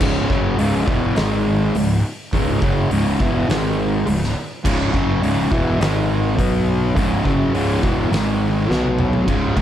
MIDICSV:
0, 0, Header, 1, 4, 480
1, 0, Start_track
1, 0, Key_signature, 4, "minor"
1, 0, Tempo, 578592
1, 15, Time_signature, 4, 2, 24, 8
1, 7978, End_track
2, 0, Start_track
2, 0, Title_t, "Distorted electric guitar"
2, 0, Program_c, 0, 30
2, 7, Note_on_c, 0, 37, 100
2, 14, Note_on_c, 0, 44, 82
2, 16, Note_on_c, 0, 49, 108
2, 242, Note_off_c, 0, 49, 0
2, 244, Note_off_c, 0, 37, 0
2, 248, Note_off_c, 0, 44, 0
2, 250, Note_on_c, 0, 42, 94
2, 252, Note_on_c, 0, 49, 99
2, 256, Note_on_c, 0, 54, 118
2, 481, Note_off_c, 0, 49, 0
2, 482, Note_off_c, 0, 42, 0
2, 485, Note_on_c, 0, 37, 94
2, 488, Note_off_c, 0, 54, 0
2, 489, Note_on_c, 0, 44, 100
2, 491, Note_on_c, 0, 49, 97
2, 720, Note_off_c, 0, 37, 0
2, 723, Note_on_c, 0, 40, 87
2, 725, Note_off_c, 0, 44, 0
2, 727, Note_off_c, 0, 49, 0
2, 730, Note_on_c, 0, 47, 89
2, 732, Note_on_c, 0, 52, 100
2, 963, Note_off_c, 0, 40, 0
2, 966, Note_off_c, 0, 47, 0
2, 966, Note_on_c, 0, 44, 105
2, 967, Note_off_c, 0, 52, 0
2, 973, Note_on_c, 0, 51, 110
2, 977, Note_on_c, 0, 56, 120
2, 1445, Note_off_c, 0, 44, 0
2, 1448, Note_off_c, 0, 51, 0
2, 1450, Note_off_c, 0, 56, 0
2, 1459, Note_on_c, 0, 37, 64
2, 1463, Note_on_c, 0, 44, 70
2, 1650, Note_off_c, 0, 37, 0
2, 1652, Note_off_c, 0, 44, 0
2, 1934, Note_on_c, 0, 37, 94
2, 1942, Note_on_c, 0, 44, 100
2, 1946, Note_on_c, 0, 49, 103
2, 2168, Note_off_c, 0, 37, 0
2, 2169, Note_off_c, 0, 49, 0
2, 2171, Note_on_c, 0, 42, 96
2, 2173, Note_off_c, 0, 44, 0
2, 2179, Note_on_c, 0, 49, 116
2, 2179, Note_on_c, 0, 54, 113
2, 2407, Note_off_c, 0, 42, 0
2, 2411, Note_off_c, 0, 49, 0
2, 2411, Note_off_c, 0, 54, 0
2, 2419, Note_on_c, 0, 37, 100
2, 2422, Note_on_c, 0, 44, 115
2, 2425, Note_on_c, 0, 49, 109
2, 2651, Note_off_c, 0, 37, 0
2, 2653, Note_off_c, 0, 44, 0
2, 2655, Note_off_c, 0, 49, 0
2, 2659, Note_on_c, 0, 40, 91
2, 2665, Note_on_c, 0, 47, 95
2, 2668, Note_on_c, 0, 52, 89
2, 2889, Note_off_c, 0, 40, 0
2, 2892, Note_off_c, 0, 47, 0
2, 2892, Note_on_c, 0, 44, 111
2, 2896, Note_off_c, 0, 52, 0
2, 2896, Note_on_c, 0, 51, 107
2, 2899, Note_on_c, 0, 56, 127
2, 3368, Note_off_c, 0, 44, 0
2, 3370, Note_off_c, 0, 51, 0
2, 3372, Note_off_c, 0, 56, 0
2, 3373, Note_on_c, 0, 37, 71
2, 3377, Note_on_c, 0, 44, 77
2, 3568, Note_off_c, 0, 37, 0
2, 3570, Note_off_c, 0, 44, 0
2, 3854, Note_on_c, 0, 37, 88
2, 3856, Note_on_c, 0, 44, 103
2, 3860, Note_on_c, 0, 49, 113
2, 4085, Note_off_c, 0, 49, 0
2, 4086, Note_off_c, 0, 37, 0
2, 4089, Note_on_c, 0, 42, 99
2, 4090, Note_off_c, 0, 44, 0
2, 4095, Note_on_c, 0, 49, 97
2, 4100, Note_on_c, 0, 54, 107
2, 4327, Note_off_c, 0, 42, 0
2, 4330, Note_off_c, 0, 49, 0
2, 4330, Note_on_c, 0, 37, 98
2, 4332, Note_off_c, 0, 54, 0
2, 4334, Note_on_c, 0, 44, 91
2, 4342, Note_on_c, 0, 49, 107
2, 4567, Note_off_c, 0, 37, 0
2, 4569, Note_off_c, 0, 44, 0
2, 4573, Note_off_c, 0, 49, 0
2, 4573, Note_on_c, 0, 40, 94
2, 4578, Note_on_c, 0, 47, 87
2, 4581, Note_on_c, 0, 52, 101
2, 4806, Note_off_c, 0, 40, 0
2, 4810, Note_off_c, 0, 47, 0
2, 4810, Note_on_c, 0, 44, 112
2, 4812, Note_off_c, 0, 52, 0
2, 4814, Note_on_c, 0, 51, 110
2, 4820, Note_on_c, 0, 56, 123
2, 5292, Note_off_c, 0, 44, 0
2, 5292, Note_on_c, 0, 47, 99
2, 5298, Note_off_c, 0, 51, 0
2, 5298, Note_on_c, 0, 54, 111
2, 5303, Note_off_c, 0, 56, 0
2, 5303, Note_on_c, 0, 59, 100
2, 5767, Note_off_c, 0, 47, 0
2, 5770, Note_on_c, 0, 37, 88
2, 5771, Note_off_c, 0, 54, 0
2, 5773, Note_off_c, 0, 59, 0
2, 5775, Note_on_c, 0, 44, 98
2, 5782, Note_on_c, 0, 49, 89
2, 6004, Note_off_c, 0, 49, 0
2, 6005, Note_off_c, 0, 37, 0
2, 6008, Note_on_c, 0, 42, 89
2, 6009, Note_off_c, 0, 44, 0
2, 6014, Note_on_c, 0, 49, 98
2, 6016, Note_on_c, 0, 54, 115
2, 6246, Note_off_c, 0, 42, 0
2, 6248, Note_off_c, 0, 49, 0
2, 6250, Note_off_c, 0, 54, 0
2, 6251, Note_on_c, 0, 37, 96
2, 6257, Note_on_c, 0, 44, 94
2, 6259, Note_on_c, 0, 49, 109
2, 6487, Note_off_c, 0, 37, 0
2, 6490, Note_off_c, 0, 44, 0
2, 6491, Note_off_c, 0, 49, 0
2, 6493, Note_on_c, 0, 40, 79
2, 6499, Note_on_c, 0, 47, 100
2, 6500, Note_on_c, 0, 52, 81
2, 6727, Note_off_c, 0, 40, 0
2, 6731, Note_off_c, 0, 47, 0
2, 6731, Note_off_c, 0, 52, 0
2, 6731, Note_on_c, 0, 44, 121
2, 6735, Note_on_c, 0, 51, 110
2, 6739, Note_on_c, 0, 56, 122
2, 7216, Note_off_c, 0, 44, 0
2, 7216, Note_on_c, 0, 47, 86
2, 7221, Note_off_c, 0, 51, 0
2, 7221, Note_on_c, 0, 54, 95
2, 7225, Note_off_c, 0, 56, 0
2, 7225, Note_on_c, 0, 59, 109
2, 7689, Note_off_c, 0, 47, 0
2, 7691, Note_off_c, 0, 54, 0
2, 7693, Note_off_c, 0, 59, 0
2, 7694, Note_on_c, 0, 37, 85
2, 7702, Note_on_c, 0, 44, 93
2, 7704, Note_on_c, 0, 49, 101
2, 7924, Note_off_c, 0, 44, 0
2, 7928, Note_off_c, 0, 37, 0
2, 7933, Note_off_c, 0, 49, 0
2, 7934, Note_on_c, 0, 44, 106
2, 7940, Note_on_c, 0, 51, 106
2, 7944, Note_on_c, 0, 56, 114
2, 7978, Note_off_c, 0, 44, 0
2, 7978, Note_off_c, 0, 51, 0
2, 7978, Note_off_c, 0, 56, 0
2, 7978, End_track
3, 0, Start_track
3, 0, Title_t, "Fingered electric bass"
3, 0, Program_c, 1, 33
3, 8, Note_on_c, 1, 25, 98
3, 235, Note_off_c, 1, 25, 0
3, 246, Note_on_c, 1, 30, 95
3, 474, Note_off_c, 1, 30, 0
3, 491, Note_on_c, 1, 25, 93
3, 717, Note_off_c, 1, 25, 0
3, 723, Note_on_c, 1, 28, 97
3, 953, Note_off_c, 1, 28, 0
3, 971, Note_on_c, 1, 32, 102
3, 1421, Note_off_c, 1, 32, 0
3, 1454, Note_on_c, 1, 25, 82
3, 1679, Note_off_c, 1, 25, 0
3, 1933, Note_on_c, 1, 25, 96
3, 2158, Note_off_c, 1, 25, 0
3, 2177, Note_on_c, 1, 30, 89
3, 2401, Note_off_c, 1, 30, 0
3, 2417, Note_on_c, 1, 25, 100
3, 2641, Note_off_c, 1, 25, 0
3, 2656, Note_on_c, 1, 28, 111
3, 2880, Note_off_c, 1, 28, 0
3, 2895, Note_on_c, 1, 32, 94
3, 3344, Note_off_c, 1, 32, 0
3, 3373, Note_on_c, 1, 25, 83
3, 3599, Note_off_c, 1, 25, 0
3, 3857, Note_on_c, 1, 25, 94
3, 4081, Note_off_c, 1, 25, 0
3, 4095, Note_on_c, 1, 30, 106
3, 4320, Note_off_c, 1, 30, 0
3, 4339, Note_on_c, 1, 25, 99
3, 4562, Note_off_c, 1, 25, 0
3, 4573, Note_on_c, 1, 28, 107
3, 4799, Note_off_c, 1, 28, 0
3, 4819, Note_on_c, 1, 32, 95
3, 5265, Note_off_c, 1, 32, 0
3, 5297, Note_on_c, 1, 35, 87
3, 5744, Note_off_c, 1, 35, 0
3, 5777, Note_on_c, 1, 25, 87
3, 6000, Note_off_c, 1, 25, 0
3, 6018, Note_on_c, 1, 30, 103
3, 6241, Note_off_c, 1, 30, 0
3, 6254, Note_on_c, 1, 25, 89
3, 6479, Note_off_c, 1, 25, 0
3, 6500, Note_on_c, 1, 28, 102
3, 6722, Note_off_c, 1, 28, 0
3, 6732, Note_on_c, 1, 32, 99
3, 7181, Note_off_c, 1, 32, 0
3, 7212, Note_on_c, 1, 35, 90
3, 7661, Note_off_c, 1, 35, 0
3, 7697, Note_on_c, 1, 25, 80
3, 7920, Note_off_c, 1, 25, 0
3, 7935, Note_on_c, 1, 32, 97
3, 7978, Note_off_c, 1, 32, 0
3, 7978, End_track
4, 0, Start_track
4, 0, Title_t, "Drums"
4, 4, Note_on_c, 9, 49, 112
4, 7, Note_on_c, 9, 36, 111
4, 87, Note_off_c, 9, 49, 0
4, 90, Note_off_c, 9, 36, 0
4, 248, Note_on_c, 9, 36, 105
4, 331, Note_off_c, 9, 36, 0
4, 486, Note_on_c, 9, 46, 64
4, 569, Note_off_c, 9, 46, 0
4, 727, Note_on_c, 9, 36, 109
4, 810, Note_off_c, 9, 36, 0
4, 963, Note_on_c, 9, 46, 61
4, 976, Note_on_c, 9, 38, 101
4, 1046, Note_off_c, 9, 46, 0
4, 1059, Note_off_c, 9, 38, 0
4, 1450, Note_on_c, 9, 46, 64
4, 1533, Note_off_c, 9, 46, 0
4, 1932, Note_on_c, 9, 36, 106
4, 1936, Note_on_c, 9, 46, 71
4, 2015, Note_off_c, 9, 36, 0
4, 2019, Note_off_c, 9, 46, 0
4, 2174, Note_on_c, 9, 36, 109
4, 2257, Note_off_c, 9, 36, 0
4, 2414, Note_on_c, 9, 46, 62
4, 2497, Note_off_c, 9, 46, 0
4, 2656, Note_on_c, 9, 36, 111
4, 2739, Note_off_c, 9, 36, 0
4, 2899, Note_on_c, 9, 46, 59
4, 2912, Note_on_c, 9, 38, 108
4, 2982, Note_off_c, 9, 46, 0
4, 2995, Note_off_c, 9, 38, 0
4, 3374, Note_on_c, 9, 46, 63
4, 3457, Note_off_c, 9, 46, 0
4, 3513, Note_on_c, 9, 38, 38
4, 3596, Note_off_c, 9, 38, 0
4, 3857, Note_on_c, 9, 36, 114
4, 3861, Note_on_c, 9, 57, 106
4, 3940, Note_off_c, 9, 36, 0
4, 3944, Note_off_c, 9, 57, 0
4, 4097, Note_on_c, 9, 36, 102
4, 4180, Note_off_c, 9, 36, 0
4, 4341, Note_on_c, 9, 46, 64
4, 4424, Note_off_c, 9, 46, 0
4, 4577, Note_on_c, 9, 36, 110
4, 4660, Note_off_c, 9, 36, 0
4, 4820, Note_on_c, 9, 46, 60
4, 4833, Note_on_c, 9, 38, 112
4, 4903, Note_off_c, 9, 46, 0
4, 4916, Note_off_c, 9, 38, 0
4, 5297, Note_on_c, 9, 36, 108
4, 5300, Note_on_c, 9, 46, 66
4, 5380, Note_off_c, 9, 36, 0
4, 5383, Note_off_c, 9, 46, 0
4, 5778, Note_on_c, 9, 36, 109
4, 5783, Note_on_c, 9, 46, 64
4, 5861, Note_off_c, 9, 36, 0
4, 5866, Note_off_c, 9, 46, 0
4, 6018, Note_on_c, 9, 36, 99
4, 6101, Note_off_c, 9, 36, 0
4, 6260, Note_on_c, 9, 46, 75
4, 6343, Note_off_c, 9, 46, 0
4, 6498, Note_on_c, 9, 36, 110
4, 6581, Note_off_c, 9, 36, 0
4, 6742, Note_on_c, 9, 46, 58
4, 6755, Note_on_c, 9, 38, 111
4, 6825, Note_off_c, 9, 46, 0
4, 6837, Note_off_c, 9, 38, 0
4, 7228, Note_on_c, 9, 38, 74
4, 7311, Note_off_c, 9, 38, 0
4, 7340, Note_on_c, 9, 48, 70
4, 7423, Note_off_c, 9, 48, 0
4, 7454, Note_on_c, 9, 45, 94
4, 7537, Note_off_c, 9, 45, 0
4, 7576, Note_on_c, 9, 43, 95
4, 7659, Note_off_c, 9, 43, 0
4, 7698, Note_on_c, 9, 36, 107
4, 7698, Note_on_c, 9, 57, 82
4, 7780, Note_off_c, 9, 36, 0
4, 7781, Note_off_c, 9, 57, 0
4, 7936, Note_on_c, 9, 36, 98
4, 7938, Note_on_c, 9, 57, 51
4, 7978, Note_off_c, 9, 36, 0
4, 7978, Note_off_c, 9, 57, 0
4, 7978, End_track
0, 0, End_of_file